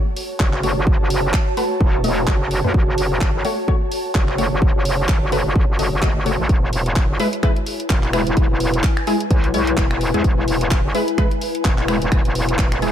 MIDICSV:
0, 0, Header, 1, 5, 480
1, 0, Start_track
1, 0, Key_signature, 3, "minor"
1, 0, Tempo, 468750
1, 890, Time_signature, 4, 2, 24, 8
1, 13228, End_track
2, 0, Start_track
2, 0, Title_t, "Ambient pad"
2, 0, Program_c, 0, 92
2, 0, Note_on_c, 0, 66, 82
2, 0, Note_on_c, 0, 73, 94
2, 0, Note_on_c, 0, 81, 82
2, 6649, Note_off_c, 0, 81, 0
2, 6650, Note_on_c, 0, 64, 72
2, 7090, Note_on_c, 0, 71, 81
2, 7268, Note_off_c, 0, 66, 0
2, 7388, Note_on_c, 0, 80, 78
2, 8322, Note_off_c, 0, 73, 0
2, 13228, Note_off_c, 0, 64, 0
2, 13228, Note_off_c, 0, 71, 0
2, 13228, Note_off_c, 0, 80, 0
2, 13228, End_track
3, 0, Start_track
3, 0, Title_t, "Synth stab"
3, 0, Program_c, 1, 62
3, 650, Note_on_c, 1, 57, 75
3, 650, Note_on_c, 1, 66, 73
3, 650, Note_on_c, 1, 73, 85
3, 728, Note_off_c, 1, 57, 0
3, 728, Note_off_c, 1, 66, 0
3, 728, Note_off_c, 1, 73, 0
3, 1609, Note_on_c, 1, 57, 89
3, 1609, Note_on_c, 1, 66, 80
3, 1609, Note_on_c, 1, 71, 100
3, 1687, Note_off_c, 1, 57, 0
3, 1687, Note_off_c, 1, 66, 0
3, 1687, Note_off_c, 1, 71, 0
3, 2089, Note_on_c, 1, 57, 85
3, 2089, Note_on_c, 1, 66, 72
3, 2089, Note_on_c, 1, 75, 89
3, 2167, Note_off_c, 1, 57, 0
3, 2167, Note_off_c, 1, 75, 0
3, 2168, Note_off_c, 1, 66, 0
3, 2706, Note_on_c, 1, 57, 75
3, 2706, Note_on_c, 1, 66, 67
3, 2706, Note_on_c, 1, 71, 81
3, 3505, Note_off_c, 1, 57, 0
3, 3505, Note_off_c, 1, 66, 0
3, 3505, Note_off_c, 1, 71, 0
3, 3530, Note_on_c, 1, 57, 93
3, 3530, Note_on_c, 1, 66, 87
3, 3530, Note_on_c, 1, 73, 97
3, 3608, Note_off_c, 1, 57, 0
3, 3608, Note_off_c, 1, 66, 0
3, 3608, Note_off_c, 1, 73, 0
3, 3769, Note_on_c, 1, 57, 92
3, 3769, Note_on_c, 1, 66, 84
3, 3769, Note_on_c, 1, 73, 99
3, 3847, Note_off_c, 1, 57, 0
3, 3847, Note_off_c, 1, 66, 0
3, 3847, Note_off_c, 1, 73, 0
3, 4489, Note_on_c, 1, 57, 79
3, 4489, Note_on_c, 1, 66, 71
3, 4489, Note_on_c, 1, 73, 84
3, 4567, Note_off_c, 1, 57, 0
3, 4567, Note_off_c, 1, 66, 0
3, 4567, Note_off_c, 1, 73, 0
3, 5449, Note_on_c, 1, 57, 90
3, 5449, Note_on_c, 1, 66, 82
3, 5449, Note_on_c, 1, 71, 99
3, 5527, Note_off_c, 1, 57, 0
3, 5527, Note_off_c, 1, 66, 0
3, 5527, Note_off_c, 1, 71, 0
3, 5929, Note_on_c, 1, 57, 75
3, 5929, Note_on_c, 1, 66, 70
3, 5929, Note_on_c, 1, 75, 84
3, 6007, Note_off_c, 1, 57, 0
3, 6007, Note_off_c, 1, 66, 0
3, 6007, Note_off_c, 1, 75, 0
3, 6168, Note_on_c, 1, 57, 87
3, 6168, Note_on_c, 1, 66, 78
3, 6168, Note_on_c, 1, 75, 93
3, 6247, Note_off_c, 1, 57, 0
3, 6247, Note_off_c, 1, 66, 0
3, 6247, Note_off_c, 1, 75, 0
3, 6409, Note_on_c, 1, 57, 81
3, 6409, Note_on_c, 1, 66, 73
3, 6409, Note_on_c, 1, 73, 84
3, 6534, Note_off_c, 1, 57, 0
3, 6534, Note_off_c, 1, 66, 0
3, 6534, Note_off_c, 1, 73, 0
3, 7370, Note_on_c, 1, 56, 90
3, 7370, Note_on_c, 1, 64, 85
3, 7370, Note_on_c, 1, 71, 104
3, 7448, Note_off_c, 1, 56, 0
3, 7448, Note_off_c, 1, 64, 0
3, 7448, Note_off_c, 1, 71, 0
3, 7609, Note_on_c, 1, 56, 92
3, 7609, Note_on_c, 1, 64, 84
3, 7609, Note_on_c, 1, 71, 102
3, 7687, Note_off_c, 1, 56, 0
3, 7687, Note_off_c, 1, 64, 0
3, 7687, Note_off_c, 1, 71, 0
3, 8329, Note_on_c, 1, 56, 77
3, 8329, Note_on_c, 1, 64, 72
3, 8329, Note_on_c, 1, 71, 85
3, 8407, Note_off_c, 1, 56, 0
3, 8407, Note_off_c, 1, 64, 0
3, 8407, Note_off_c, 1, 71, 0
3, 9289, Note_on_c, 1, 56, 92
3, 9289, Note_on_c, 1, 64, 81
3, 9289, Note_on_c, 1, 68, 96
3, 9367, Note_off_c, 1, 56, 0
3, 9367, Note_off_c, 1, 64, 0
3, 9367, Note_off_c, 1, 68, 0
3, 9769, Note_on_c, 1, 56, 81
3, 9769, Note_on_c, 1, 64, 73
3, 9769, Note_on_c, 1, 73, 90
3, 9847, Note_off_c, 1, 56, 0
3, 9847, Note_off_c, 1, 64, 0
3, 9848, Note_off_c, 1, 73, 0
3, 10385, Note_on_c, 1, 56, 76
3, 10385, Note_on_c, 1, 64, 68
3, 10385, Note_on_c, 1, 68, 85
3, 11184, Note_off_c, 1, 56, 0
3, 11184, Note_off_c, 1, 64, 0
3, 11184, Note_off_c, 1, 68, 0
3, 11209, Note_on_c, 1, 56, 94
3, 11209, Note_on_c, 1, 64, 82
3, 11209, Note_on_c, 1, 71, 102
3, 11287, Note_off_c, 1, 56, 0
3, 11287, Note_off_c, 1, 64, 0
3, 11287, Note_off_c, 1, 71, 0
3, 11449, Note_on_c, 1, 56, 91
3, 11449, Note_on_c, 1, 64, 83
3, 11449, Note_on_c, 1, 71, 104
3, 11527, Note_off_c, 1, 56, 0
3, 11527, Note_off_c, 1, 64, 0
3, 11527, Note_off_c, 1, 71, 0
3, 12168, Note_on_c, 1, 71, 84
3, 12169, Note_on_c, 1, 56, 78
3, 12169, Note_on_c, 1, 64, 69
3, 12247, Note_off_c, 1, 56, 0
3, 12247, Note_off_c, 1, 64, 0
3, 12247, Note_off_c, 1, 71, 0
3, 13129, Note_on_c, 1, 56, 89
3, 13129, Note_on_c, 1, 64, 80
3, 13129, Note_on_c, 1, 68, 98
3, 13207, Note_off_c, 1, 56, 0
3, 13207, Note_off_c, 1, 64, 0
3, 13207, Note_off_c, 1, 68, 0
3, 13228, End_track
4, 0, Start_track
4, 0, Title_t, "Wobble bass"
4, 0, Program_c, 2, 39
4, 409, Note_on_c, 2, 30, 92
4, 764, Note_off_c, 2, 30, 0
4, 786, Note_on_c, 2, 30, 95
4, 1004, Note_off_c, 2, 30, 0
4, 1026, Note_on_c, 2, 30, 93
4, 1353, Note_off_c, 2, 30, 0
4, 1849, Note_on_c, 2, 28, 91
4, 2313, Note_off_c, 2, 28, 0
4, 2329, Note_on_c, 2, 30, 91
4, 2684, Note_off_c, 2, 30, 0
4, 2706, Note_on_c, 2, 42, 93
4, 2793, Note_off_c, 2, 42, 0
4, 2809, Note_on_c, 2, 30, 97
4, 3033, Note_off_c, 2, 30, 0
4, 3050, Note_on_c, 2, 30, 96
4, 3404, Note_off_c, 2, 30, 0
4, 3426, Note_on_c, 2, 32, 94
4, 3513, Note_off_c, 2, 32, 0
4, 4249, Note_on_c, 2, 30, 91
4, 4604, Note_off_c, 2, 30, 0
4, 4626, Note_on_c, 2, 30, 94
4, 4844, Note_off_c, 2, 30, 0
4, 4865, Note_on_c, 2, 30, 94
4, 5193, Note_off_c, 2, 30, 0
4, 5209, Note_on_c, 2, 33, 94
4, 5324, Note_off_c, 2, 33, 0
4, 5346, Note_on_c, 2, 30, 96
4, 5564, Note_off_c, 2, 30, 0
4, 5586, Note_on_c, 2, 30, 94
4, 5673, Note_off_c, 2, 30, 0
4, 5690, Note_on_c, 2, 30, 93
4, 5804, Note_off_c, 2, 30, 0
4, 5826, Note_on_c, 2, 30, 96
4, 5913, Note_off_c, 2, 30, 0
4, 5929, Note_on_c, 2, 30, 99
4, 6044, Note_off_c, 2, 30, 0
4, 6065, Note_on_c, 2, 30, 98
4, 6284, Note_off_c, 2, 30, 0
4, 6305, Note_on_c, 2, 30, 95
4, 6524, Note_off_c, 2, 30, 0
4, 6545, Note_on_c, 2, 33, 95
4, 6633, Note_off_c, 2, 33, 0
4, 6649, Note_on_c, 2, 28, 97
4, 6873, Note_off_c, 2, 28, 0
4, 6889, Note_on_c, 2, 28, 93
4, 7244, Note_off_c, 2, 28, 0
4, 7265, Note_on_c, 2, 30, 96
4, 7353, Note_off_c, 2, 30, 0
4, 8089, Note_on_c, 2, 28, 89
4, 8444, Note_off_c, 2, 28, 0
4, 8465, Note_on_c, 2, 28, 94
4, 8684, Note_off_c, 2, 28, 0
4, 8706, Note_on_c, 2, 28, 101
4, 9033, Note_off_c, 2, 28, 0
4, 9529, Note_on_c, 2, 35, 94
4, 9993, Note_off_c, 2, 35, 0
4, 10009, Note_on_c, 2, 28, 93
4, 10364, Note_off_c, 2, 28, 0
4, 10385, Note_on_c, 2, 40, 93
4, 10473, Note_off_c, 2, 40, 0
4, 10489, Note_on_c, 2, 28, 94
4, 10713, Note_off_c, 2, 28, 0
4, 10728, Note_on_c, 2, 28, 93
4, 11084, Note_off_c, 2, 28, 0
4, 11105, Note_on_c, 2, 30, 96
4, 11193, Note_off_c, 2, 30, 0
4, 11929, Note_on_c, 2, 28, 90
4, 12284, Note_off_c, 2, 28, 0
4, 12305, Note_on_c, 2, 28, 96
4, 12524, Note_off_c, 2, 28, 0
4, 12545, Note_on_c, 2, 28, 93
4, 12873, Note_off_c, 2, 28, 0
4, 12889, Note_on_c, 2, 28, 101
4, 13228, Note_off_c, 2, 28, 0
4, 13228, End_track
5, 0, Start_track
5, 0, Title_t, "Drums"
5, 169, Note_on_c, 9, 46, 99
5, 272, Note_off_c, 9, 46, 0
5, 406, Note_on_c, 9, 39, 112
5, 409, Note_on_c, 9, 36, 111
5, 509, Note_off_c, 9, 39, 0
5, 512, Note_off_c, 9, 36, 0
5, 543, Note_on_c, 9, 39, 36
5, 646, Note_off_c, 9, 39, 0
5, 650, Note_on_c, 9, 46, 90
5, 752, Note_off_c, 9, 46, 0
5, 889, Note_on_c, 9, 36, 124
5, 992, Note_off_c, 9, 36, 0
5, 1129, Note_on_c, 9, 46, 112
5, 1232, Note_off_c, 9, 46, 0
5, 1366, Note_on_c, 9, 39, 118
5, 1369, Note_on_c, 9, 36, 119
5, 1469, Note_off_c, 9, 39, 0
5, 1472, Note_off_c, 9, 36, 0
5, 1609, Note_on_c, 9, 46, 93
5, 1712, Note_off_c, 9, 46, 0
5, 1849, Note_on_c, 9, 36, 120
5, 1952, Note_off_c, 9, 36, 0
5, 2089, Note_on_c, 9, 46, 100
5, 2192, Note_off_c, 9, 46, 0
5, 2327, Note_on_c, 9, 39, 110
5, 2329, Note_on_c, 9, 36, 112
5, 2429, Note_off_c, 9, 39, 0
5, 2432, Note_off_c, 9, 36, 0
5, 2570, Note_on_c, 9, 46, 91
5, 2672, Note_off_c, 9, 46, 0
5, 2809, Note_on_c, 9, 36, 121
5, 2912, Note_off_c, 9, 36, 0
5, 3050, Note_on_c, 9, 46, 113
5, 3152, Note_off_c, 9, 46, 0
5, 3287, Note_on_c, 9, 39, 110
5, 3289, Note_on_c, 9, 36, 122
5, 3389, Note_off_c, 9, 39, 0
5, 3392, Note_off_c, 9, 36, 0
5, 3529, Note_on_c, 9, 46, 99
5, 3632, Note_off_c, 9, 46, 0
5, 3769, Note_on_c, 9, 36, 122
5, 3872, Note_off_c, 9, 36, 0
5, 4009, Note_on_c, 9, 46, 106
5, 4112, Note_off_c, 9, 46, 0
5, 4247, Note_on_c, 9, 39, 113
5, 4249, Note_on_c, 9, 36, 118
5, 4349, Note_off_c, 9, 39, 0
5, 4352, Note_off_c, 9, 36, 0
5, 4384, Note_on_c, 9, 39, 35
5, 4486, Note_off_c, 9, 39, 0
5, 4489, Note_on_c, 9, 46, 96
5, 4592, Note_off_c, 9, 46, 0
5, 4730, Note_on_c, 9, 36, 125
5, 4832, Note_off_c, 9, 36, 0
5, 4969, Note_on_c, 9, 46, 113
5, 5072, Note_off_c, 9, 46, 0
5, 5207, Note_on_c, 9, 39, 114
5, 5209, Note_on_c, 9, 36, 116
5, 5309, Note_off_c, 9, 39, 0
5, 5312, Note_off_c, 9, 36, 0
5, 5450, Note_on_c, 9, 46, 96
5, 5552, Note_off_c, 9, 46, 0
5, 5689, Note_on_c, 9, 36, 120
5, 5792, Note_off_c, 9, 36, 0
5, 5929, Note_on_c, 9, 46, 102
5, 6032, Note_off_c, 9, 46, 0
5, 6167, Note_on_c, 9, 39, 109
5, 6169, Note_on_c, 9, 36, 117
5, 6269, Note_off_c, 9, 39, 0
5, 6272, Note_off_c, 9, 36, 0
5, 6410, Note_on_c, 9, 46, 93
5, 6512, Note_off_c, 9, 46, 0
5, 6649, Note_on_c, 9, 36, 120
5, 6650, Note_on_c, 9, 42, 62
5, 6752, Note_off_c, 9, 36, 0
5, 6752, Note_off_c, 9, 42, 0
5, 6889, Note_on_c, 9, 46, 105
5, 6992, Note_off_c, 9, 46, 0
5, 7026, Note_on_c, 9, 42, 47
5, 7127, Note_on_c, 9, 39, 107
5, 7128, Note_off_c, 9, 42, 0
5, 7129, Note_on_c, 9, 36, 120
5, 7129, Note_on_c, 9, 42, 59
5, 7229, Note_off_c, 9, 39, 0
5, 7232, Note_off_c, 9, 36, 0
5, 7232, Note_off_c, 9, 42, 0
5, 7369, Note_on_c, 9, 46, 94
5, 7471, Note_off_c, 9, 46, 0
5, 7506, Note_on_c, 9, 42, 49
5, 7608, Note_off_c, 9, 42, 0
5, 7609, Note_on_c, 9, 26, 59
5, 7609, Note_on_c, 9, 36, 110
5, 7609, Note_on_c, 9, 42, 59
5, 7711, Note_off_c, 9, 26, 0
5, 7711, Note_off_c, 9, 42, 0
5, 7712, Note_off_c, 9, 36, 0
5, 7746, Note_on_c, 9, 42, 33
5, 7848, Note_off_c, 9, 42, 0
5, 7849, Note_on_c, 9, 46, 101
5, 7951, Note_off_c, 9, 46, 0
5, 7986, Note_on_c, 9, 42, 49
5, 8086, Note_on_c, 9, 39, 110
5, 8088, Note_off_c, 9, 42, 0
5, 8089, Note_on_c, 9, 36, 114
5, 8089, Note_on_c, 9, 42, 60
5, 8189, Note_off_c, 9, 39, 0
5, 8191, Note_off_c, 9, 42, 0
5, 8192, Note_off_c, 9, 36, 0
5, 8223, Note_on_c, 9, 39, 34
5, 8226, Note_on_c, 9, 42, 34
5, 8325, Note_off_c, 9, 39, 0
5, 8328, Note_off_c, 9, 42, 0
5, 8329, Note_on_c, 9, 26, 74
5, 8329, Note_on_c, 9, 46, 90
5, 8431, Note_off_c, 9, 26, 0
5, 8431, Note_off_c, 9, 46, 0
5, 8466, Note_on_c, 9, 42, 47
5, 8568, Note_off_c, 9, 42, 0
5, 8569, Note_on_c, 9, 36, 114
5, 8569, Note_on_c, 9, 42, 65
5, 8672, Note_off_c, 9, 36, 0
5, 8672, Note_off_c, 9, 42, 0
5, 8809, Note_on_c, 9, 46, 99
5, 8911, Note_off_c, 9, 46, 0
5, 8946, Note_on_c, 9, 42, 49
5, 9047, Note_on_c, 9, 39, 107
5, 9048, Note_off_c, 9, 42, 0
5, 9049, Note_on_c, 9, 36, 110
5, 9049, Note_on_c, 9, 42, 61
5, 9149, Note_off_c, 9, 39, 0
5, 9152, Note_off_c, 9, 36, 0
5, 9152, Note_off_c, 9, 42, 0
5, 9185, Note_on_c, 9, 26, 81
5, 9288, Note_off_c, 9, 26, 0
5, 9289, Note_on_c, 9, 46, 92
5, 9391, Note_off_c, 9, 46, 0
5, 9426, Note_on_c, 9, 42, 52
5, 9528, Note_off_c, 9, 42, 0
5, 9529, Note_on_c, 9, 36, 114
5, 9529, Note_on_c, 9, 42, 60
5, 9631, Note_off_c, 9, 42, 0
5, 9632, Note_off_c, 9, 36, 0
5, 9665, Note_on_c, 9, 42, 34
5, 9768, Note_off_c, 9, 42, 0
5, 9769, Note_on_c, 9, 46, 95
5, 9871, Note_off_c, 9, 46, 0
5, 9906, Note_on_c, 9, 42, 53
5, 10007, Note_on_c, 9, 39, 105
5, 10008, Note_off_c, 9, 42, 0
5, 10009, Note_on_c, 9, 36, 109
5, 10009, Note_on_c, 9, 42, 61
5, 10109, Note_off_c, 9, 39, 0
5, 10112, Note_off_c, 9, 36, 0
5, 10112, Note_off_c, 9, 42, 0
5, 10146, Note_on_c, 9, 26, 79
5, 10146, Note_on_c, 9, 42, 35
5, 10248, Note_off_c, 9, 26, 0
5, 10248, Note_off_c, 9, 42, 0
5, 10249, Note_on_c, 9, 46, 90
5, 10352, Note_off_c, 9, 46, 0
5, 10386, Note_on_c, 9, 42, 50
5, 10489, Note_off_c, 9, 42, 0
5, 10489, Note_on_c, 9, 36, 112
5, 10489, Note_on_c, 9, 42, 69
5, 10592, Note_off_c, 9, 36, 0
5, 10592, Note_off_c, 9, 42, 0
5, 10729, Note_on_c, 9, 46, 98
5, 10832, Note_off_c, 9, 46, 0
5, 10866, Note_on_c, 9, 42, 51
5, 10967, Note_on_c, 9, 39, 111
5, 10968, Note_off_c, 9, 42, 0
5, 10969, Note_on_c, 9, 36, 113
5, 10969, Note_on_c, 9, 42, 62
5, 11069, Note_off_c, 9, 39, 0
5, 11072, Note_off_c, 9, 36, 0
5, 11072, Note_off_c, 9, 42, 0
5, 11209, Note_on_c, 9, 46, 93
5, 11312, Note_off_c, 9, 46, 0
5, 11346, Note_on_c, 9, 42, 53
5, 11448, Note_off_c, 9, 42, 0
5, 11449, Note_on_c, 9, 26, 64
5, 11449, Note_on_c, 9, 36, 109
5, 11449, Note_on_c, 9, 42, 62
5, 11551, Note_off_c, 9, 26, 0
5, 11551, Note_off_c, 9, 36, 0
5, 11551, Note_off_c, 9, 42, 0
5, 11586, Note_on_c, 9, 42, 36
5, 11688, Note_off_c, 9, 42, 0
5, 11689, Note_on_c, 9, 46, 97
5, 11791, Note_off_c, 9, 46, 0
5, 11826, Note_on_c, 9, 42, 54
5, 11926, Note_on_c, 9, 39, 110
5, 11928, Note_off_c, 9, 42, 0
5, 11929, Note_on_c, 9, 36, 105
5, 11929, Note_on_c, 9, 42, 65
5, 12029, Note_off_c, 9, 39, 0
5, 12031, Note_off_c, 9, 42, 0
5, 12032, Note_off_c, 9, 36, 0
5, 12062, Note_on_c, 9, 39, 36
5, 12065, Note_on_c, 9, 42, 37
5, 12165, Note_off_c, 9, 39, 0
5, 12168, Note_off_c, 9, 42, 0
5, 12169, Note_on_c, 9, 26, 79
5, 12169, Note_on_c, 9, 46, 85
5, 12271, Note_off_c, 9, 26, 0
5, 12271, Note_off_c, 9, 46, 0
5, 12306, Note_on_c, 9, 42, 52
5, 12408, Note_off_c, 9, 42, 0
5, 12409, Note_on_c, 9, 26, 88
5, 12409, Note_on_c, 9, 36, 116
5, 12409, Note_on_c, 9, 42, 67
5, 12511, Note_off_c, 9, 26, 0
5, 12511, Note_off_c, 9, 42, 0
5, 12512, Note_off_c, 9, 36, 0
5, 12546, Note_on_c, 9, 42, 37
5, 12648, Note_off_c, 9, 42, 0
5, 12649, Note_on_c, 9, 46, 103
5, 12752, Note_off_c, 9, 46, 0
5, 12786, Note_on_c, 9, 42, 52
5, 12887, Note_on_c, 9, 39, 110
5, 12889, Note_off_c, 9, 42, 0
5, 12889, Note_on_c, 9, 36, 112
5, 12889, Note_on_c, 9, 42, 68
5, 12989, Note_off_c, 9, 39, 0
5, 12992, Note_off_c, 9, 36, 0
5, 12992, Note_off_c, 9, 42, 0
5, 13026, Note_on_c, 9, 26, 77
5, 13026, Note_on_c, 9, 42, 38
5, 13128, Note_off_c, 9, 26, 0
5, 13128, Note_off_c, 9, 42, 0
5, 13130, Note_on_c, 9, 46, 93
5, 13228, Note_off_c, 9, 46, 0
5, 13228, End_track
0, 0, End_of_file